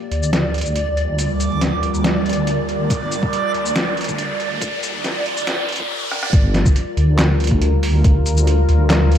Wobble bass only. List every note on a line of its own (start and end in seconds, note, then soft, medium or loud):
0.11 1.82 D2 loud
1.83 2.89 D2 loud
2.90 3.32 G1 loud
3.55 5.25 D2 loud
5.26 5.68 D2 loud
5.69 5.89 F1 loud
6.33 6.75 G1 loud
6.97 8.67 D2 loud
8.69 9.18 D2 loud